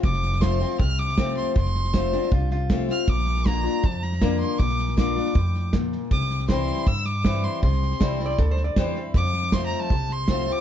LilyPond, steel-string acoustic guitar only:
\new Staff \with { instrumentName = "Steel-string acoustic guitar" } { \time 4/4 \key f \major \tempo 4 = 158 << { r4 <f a c' f'>8 <c' f'>8 r4 <f a c' f'>4 | r4 <f a c' f'>8 <c' f'>8 r4 <f a c' f'>8 <c' f'>8 | r4 <d bes d' f'>8 <d' f'>8 r4 <d bes d' f'>4 | r4 <d bes d' f'>8 <d' f'>8 r2 |
r4 <e g c' e'>4 r4 <e g c' e'>4 | r4 <e g c' e'>8 <c' e'>8 r4 <e g c' e'>8 <c' e'>8 | r4 <f a c' f'>4 r4 <f a c' f'>8 <c' f'>8 | } \\ { f,2 c2 | f,2 c2 | bes,2 f,2 | bes,2 r4 bes,4 |
c2 g,2 | c2 g,2 | f,2 c2 | } >> }